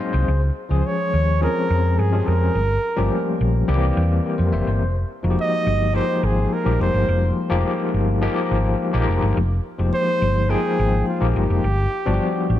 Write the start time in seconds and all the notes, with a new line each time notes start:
Already playing: F#3 G#3 A#3 C4 D#4 G#4 G#5 C6
0.00 C5 D#5 F5
0.13 C2 G#4 C5
0.28 C#2
0.69 C#2 F3 G#3 C#4 G#4
0.78 C5
0.86 C#5
1.14 D#2
1.41 F3 G#3 C4 C#4 G#4 A#4
1.70 F2
1.99 G2 G#4
2.12 F3 G#3 C4 C#4 G4
2.20 G#4
2.27 F2 A#4
2.55 G1
2.96 G1 F3 G3 A3 C#4 G4
3.03 A#3
3.41 A#1
3.67 C2 D#3 G3 A#3 C4 G4
3.74 E3
3.97 E2
4.25 G4 A#4
4.38 F2 C5
4.52 F1 C5 E5
4.67 G1 C5
4.81 F1
5.23 F1 F3 G#3 A#3 D#4 F#4
5.31 G4
5.41 D#5
5.67 G1
5.93 F3 G#3 A#3 D#4 G4 C5
6.23 G#1 G#4
6.53 A#4
6.65 A#1 F3 G3 A#3 D#4 G4
6.72 G#3
6.80 F1 C5
6.94 G1
7.09 F1
7.49 F1 F3 G#3 A#3 D#4 G4
7.94 G1
8.22 F3 G#3 A#3 D#4 G4
8.51 G#1
8.93 A#1 F3 G#3 A#3 D#4 G4
9.08 F1
9.23 G1
9.37 F1
9.79 F1 F3 G#3 A#3 D#4 G4
9.94 C5
10.22 G1
10.49 F3 G#3 A#3 D#4 G#4 G5
10.79 G#1
11.08 F4
11.20 A#1 F3 G#3 A#3 D#4 G4
11.29 G#4
11.36 G1 G4
11.50 F1
11.64 G1
12.05 G1 F3 G3 B3 D4 F#4
12.13 G4
12.50 A1